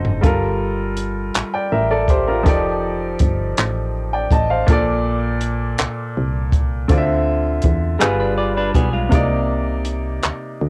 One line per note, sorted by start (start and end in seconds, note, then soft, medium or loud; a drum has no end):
0.00 0.20 F#1 medium
0.00 0.23 D3 medium
0.00 0.23 C4 medium
0.00 0.21 D#4 medium
0.00 0.27 F#4 medium
0.00 0.21 C5 medium
0.00 0.24 D#5 medium
0.05 floor tom medium
0.21 1.31 G1 loud
0.21 2.40 G3 medium
0.21 1.32 F4 medium
0.21 1.33 A4 medium
0.21 kick loud
0.21 closed hi-hat medium
0.26 1.34 A#4 medium
0.97 closed hi-hat medium
1.34 1.43 A1 soft
1.34 clap loud
1.34 closed hi-hat medium
1.54 1.71 D5 soft
1.54 1.71 G5 medium
1.72 2.48 A1 medium
1.72 1.89 A#4 medium
1.72 1.89 E5 medium
1.91 2.08 A4 medium
1.91 2.08 D5 medium
2.08 2.27 G4 medium
2.08 2.27 C5 medium
2.08 kick medium
2.08 closed hi-hat medium
2.28 2.63 F4 medium
2.28 2.63 A#4 medium
2.43 3.16 F1 loud
2.43 4.63 F3 medium
2.43 4.63 D#4 medium
2.43 4.64 G4 medium
2.43 4.65 A4 medium
2.43 kick loud
2.43 closed hi-hat medium
2.48 3.92 D5 medium
3.19 3.54 G1 medium
3.19 kick medium
3.19 closed hi-hat medium
3.57 4.28 A1 medium
3.57 clap loud
3.57 closed hi-hat medium
4.13 4.31 D5 soft
4.13 4.30 G5 medium
4.30 4.64 A1 medium
4.30 4.49 D#5 medium
4.30 4.49 A5 medium
4.30 kick medium
4.30 closed hi-hat medium
4.50 4.85 C5 medium
4.50 4.85 F5 medium
4.66 5.76 A#1 loud
4.66 6.85 A#2 medium
4.66 6.86 A#3 medium
4.66 6.87 A4 medium
4.66 kick loud
4.66 closed hi-hat medium
4.72 6.88 D5 medium
5.41 closed hi-hat medium
5.78 5.87 C2 soft
5.78 clap loud
5.78 closed hi-hat medium
6.17 6.87 C2 medium
6.52 kick medium
6.52 closed hi-hat medium
6.88 7.60 D2 loud
6.88 8.00 D3 medium
6.88 8.01 C4 medium
6.88 7.99 F4 medium
6.88 6.97 D5 medium
6.88 kick loud
6.88 closed hi-hat medium
6.98 8.05 E5 medium
7.62 7.98 E2 medium
7.62 kick medium
7.62 closed hi-hat medium
7.99 8.72 G1 medium
7.99 9.11 G3 medium
7.99 8.19 B3 medium
7.99 9.12 F4 medium
7.99 8.18 G#4 medium
7.99 9.12 G#4 medium
7.99 9.12 B4 medium
7.99 clap loud
7.99 closed hi-hat medium
8.20 8.38 D4 medium
8.20 8.37 B4 medium
8.38 8.56 F4 medium
8.38 8.56 D5 medium
8.57 8.75 D4 medium
8.57 8.75 B4 medium
8.74 9.09 B1 loud
8.74 8.93 B3 medium
8.74 8.93 G#4 medium
8.74 kick medium
8.74 closed hi-hat medium
8.93 9.29 G#3 medium
8.93 9.29 F4 medium
9.09 10.20 C2 loud
9.09 10.69 C3 medium
9.09 10.69 A#3 medium
9.09 10.69 D#4 medium
9.09 kick loud
9.09 closed hi-hat medium
9.14 10.69 D5 medium
9.85 closed hi-hat medium
10.23 10.32 D2 soft
10.23 clap medium
10.23 closed hi-hat medium
10.61 10.69 D2 loud